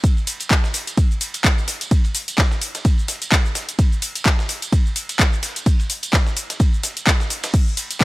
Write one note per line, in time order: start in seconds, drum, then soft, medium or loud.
0.04 kick loud
0.04 closed hi-hat medium
0.04 ride medium
0.04 tambourine medium
0.04 shaker soft
0.17 tambourine soft
0.17 shaker soft
0.27 open hi-hat loud
0.27 ride medium
0.27 shaker medium
0.40 closed hi-hat medium
0.40 tambourine medium
0.40 shaker soft
0.51 kick loud
0.51 snare loud
0.51 clap loud
0.51 closed hi-hat soft
0.51 ride medium
0.51 shaker soft
0.64 snare medium
0.64 tambourine soft
0.64 shaker soft
0.74 snare soft
0.74 open hi-hat loud
0.74 ride medium
0.74 shaker medium
0.87 closed hi-hat medium
0.87 tambourine medium
0.87 shaker soft
0.97 kick loud
0.97 closed hi-hat medium
0.97 ride medium
0.97 tambourine medium
0.97 shaker soft
1.11 tambourine soft
1.11 shaker soft
1.21 open hi-hat loud
1.21 ride medium
1.21 shaker medium
1.34 closed hi-hat medium
1.34 ride soft
1.34 tambourine medium
1.34 shaker soft
1.44 kick loud
1.44 snare loud
1.44 clap loud
1.44 closed hi-hat medium
1.44 ride medium
1.44 tambourine medium
1.44 shaker soft
1.58 tambourine soft
1.58 shaker soft
1.68 snare soft
1.68 open hi-hat medium
1.68 ride medium
1.68 shaker medium
1.81 closed hi-hat medium
1.81 tambourine medium
1.81 shaker soft
1.91 kick loud
1.91 closed hi-hat medium
1.91 ride medium
1.91 tambourine medium
1.91 shaker soft
2.04 ride soft
2.04 tambourine soft
2.04 shaker soft
2.15 open hi-hat loud
2.15 open hi-hat medium
2.15 shaker medium
2.28 closed hi-hat medium
2.28 tambourine medium
2.28 shaker soft
2.38 kick loud
2.38 snare loud
2.38 clap loud
2.38 closed hi-hat medium
2.38 ride medium
2.38 shaker soft
2.51 snare soft
2.51 tambourine soft
2.51 shaker soft
2.61 open hi-hat medium
2.61 ride medium
2.61 shaker medium
2.75 snare soft
2.75 closed hi-hat medium
2.75 tambourine medium
2.75 shaker soft
2.85 kick loud
2.85 closed hi-hat medium
2.85 ride medium
2.85 tambourine medium
2.85 shaker soft
2.98 tambourine soft
2.98 shaker soft
3.08 snare soft
3.08 open hi-hat loud
3.08 ride medium
3.08 shaker medium
3.22 closed hi-hat medium
3.22 tambourine medium
3.22 shaker soft
3.32 kick loud
3.32 snare loud
3.32 clap loud
3.32 closed hi-hat medium
3.32 ride medium
3.32 shaker soft
3.45 tambourine soft
3.45 shaker soft
3.55 snare medium
3.55 open hi-hat medium
3.55 ride medium
3.55 shaker medium
3.69 closed hi-hat medium
3.69 tambourine medium
3.69 shaker soft
3.79 kick loud
3.79 closed hi-hat medium
3.79 ride medium
3.79 tambourine medium
3.79 shaker soft
3.92 tambourine soft
3.92 shaker soft
4.02 open hi-hat loud
4.02 ride medium
4.02 shaker medium
4.16 closed hi-hat medium
4.16 tambourine medium
4.16 shaker soft
4.26 kick loud
4.26 snare loud
4.26 clap loud
4.26 closed hi-hat medium
4.26 ride medium
4.26 shaker soft
4.39 snare medium
4.39 tambourine soft
4.39 shaker soft
4.49 snare soft
4.49 open hi-hat medium
4.49 ride medium
4.49 shaker medium
4.62 closed hi-hat medium
4.62 tambourine medium
4.62 shaker soft
4.72 kick loud
4.72 closed hi-hat medium
4.72 ride medium
4.72 tambourine medium
4.72 shaker soft
4.86 tambourine soft
4.86 shaker soft
4.96 open hi-hat loud
4.96 ride medium
4.96 shaker medium
5.09 closed hi-hat medium
5.09 ride soft
5.09 tambourine medium
5.09 shaker soft
5.19 kick loud
5.19 snare loud
5.19 clap loud
5.19 closed hi-hat medium
5.19 ride medium
5.19 shaker soft
5.32 tambourine soft
5.32 shaker soft
5.43 snare soft
5.43 open hi-hat medium
5.43 ride medium
5.43 shaker medium
5.56 closed hi-hat medium
5.56 tambourine medium
5.56 shaker soft
5.66 kick loud
5.66 closed hi-hat medium
5.66 ride medium
5.66 tambourine medium
5.66 shaker soft
5.80 ride soft
5.80 tambourine soft
5.80 shaker soft
5.90 open hi-hat medium
5.90 open hi-hat loud
5.90 shaker medium
6.03 closed hi-hat medium
6.03 tambourine medium
6.03 shaker soft
6.13 kick loud
6.13 snare loud
6.13 clap loud
6.13 closed hi-hat medium
6.13 ride medium
6.13 shaker soft
6.27 snare soft
6.27 tambourine soft
6.27 shaker soft
6.37 open hi-hat medium
6.37 ride medium
6.37 shaker medium
6.50 snare soft
6.50 closed hi-hat medium
6.50 tambourine medium
6.50 shaker soft
6.60 kick loud
6.60 closed hi-hat medium
6.60 ride medium
6.60 tambourine medium
6.60 shaker soft
6.72 tambourine soft
6.72 shaker soft
6.83 snare soft
6.83 open hi-hat loud
6.83 ride medium
6.83 shaker medium
6.97 closed hi-hat medium
6.97 tambourine medium
6.97 shaker soft
7.07 kick loud
7.07 snare loud
7.07 clap loud
7.07 closed hi-hat medium
7.07 ride medium
7.07 tambourine medium
7.07 shaker soft
7.20 snare medium
7.20 tambourine soft
7.20 shaker soft
7.30 snare soft
7.30 open hi-hat medium
7.30 ride medium
7.30 shaker medium
7.43 snare loud
7.43 closed hi-hat medium
7.43 ride medium
7.43 tambourine medium
7.43 shaker soft
7.54 kick loud
7.54 closed hi-hat medium
7.54 crash medium
7.54 ride medium
7.54 tambourine medium
7.54 shaker soft
7.66 tambourine soft
7.66 shaker soft
7.77 open hi-hat loud
7.77 ride medium
7.77 shaker medium
7.91 closed hi-hat medium
7.91 tambourine medium
7.91 shaker soft
8.00 kick loud
8.00 snare loud
8.00 clap loud
8.00 closed hi-hat medium
8.00 ride medium
8.00 tambourine medium